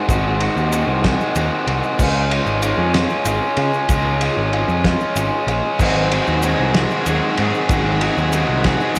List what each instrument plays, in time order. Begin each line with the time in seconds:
0.08 picked electric bass G#1, overdriven electric guitar D#3 G#3 C4 F#4, kick, ride, shaker
0.40 overdriven electric guitar D#3 G#3 C4 F#4, ride
0.56 picked electric bass D#2, shaker
0.72 overdriven electric guitar D#3 G#3 C4 F#4, ride, shaker
0.87 picked electric bass C2
1.03 overdriven electric guitar D#3 G#3 C4 F#4, kick, snare, ride
1.21 shaker
1.35 picked electric bass D#2, overdriven electric guitar D#3 G#3 C4 F#4, ride, shaker
1.67 picked electric bass C2, overdriven electric guitar D#3 G#3 C4 F#4, ride
1.83 shaker
1.99 picked electric bass C#2, overdriven electric guitar G#3 C#4 F4, kick, crash, shaker
2.30 overdriven electric guitar G#3 C#4 F4, ride
2.46 picked electric bass G#1, shaker
2.62 overdriven electric guitar G#3 C#4 F4, ride, shaker
2.78 picked electric bass F2
2.93 overdriven electric guitar G#3 C#4 F4, snare, ride
3.10 shaker
3.25 picked electric bass G#1, overdriven electric guitar G#3 C#4 F4, ride, shaker
3.57 picked electric bass C#3, overdriven electric guitar G#3 C#4 F4, ride
3.74 shaker
3.89 picked electric bass C#2, overdriven electric guitar G#3 C#4 F4, kick, ride, shaker
4.21 overdriven electric guitar G#3 C#4 F4, ride, shaker
4.37 picked electric bass G#1
4.53 overdriven electric guitar G#3 C#4 F4, ride
4.68 picked electric bass F2, shaker
4.84 overdriven electric guitar G#3 C#4 F4, kick, snare, ride
5.00 shaker
5.16 picked electric bass G#1, overdriven electric guitar G#3 C#4 F4, ride, shaker
5.47 picked electric bass A#1, overdriven electric guitar G#3 C#4 F4, ride, shaker
5.79 picked electric bass G#1, overdriven electric guitar G#2 D#3 F#3 G#3 C4 D#4 F#4 G#4, kick, crash, shaker
6.11 overdriven electric guitar G#2 D#3 F#3 G#3 C4 D#4 F#4 G#4, ride
6.27 picked electric bass D#2, shaker
6.42 overdriven electric guitar G#2 D#3 F#3 G#3 C4 D#4 F#4 G#4, ride, shaker
6.59 picked electric bass C2
6.74 overdriven electric guitar G#2 D#3 F#3 G#3 C4 D#4 F#4 G#4, snare, ride
6.90 shaker
7.06 picked electric bass D#2, overdriven electric guitar G#2 D#3 F#3 G#3 C4 D#4 F#4 G#4, ride, shaker
7.37 overdriven electric guitar G#2 D#3 F#3 G#3 C4 D#4 F#4 G#4, picked electric bass G#2, ride
7.54 shaker
7.69 picked electric bass G#1, overdriven electric guitar G#2 D#3 F#3 G#3 C4 D#4 F#4 G#4, kick, ride, shaker
8.01 overdriven electric guitar G#2 D#3 F#3 G#3 C4 D#4 F#4 G#4, ride
8.17 picked electric bass D#2, shaker
8.32 overdriven electric guitar G#2 D#3 F#3 G#3 C4 D#4 F#4 G#4, ride, shaker
8.48 picked electric bass C2
8.64 overdriven electric guitar G#2 D#3 F#3 G#3 C4 D#4 F#4 G#4, kick, snare, ride
8.80 shaker
8.95 overdriven electric guitar D#3, shaker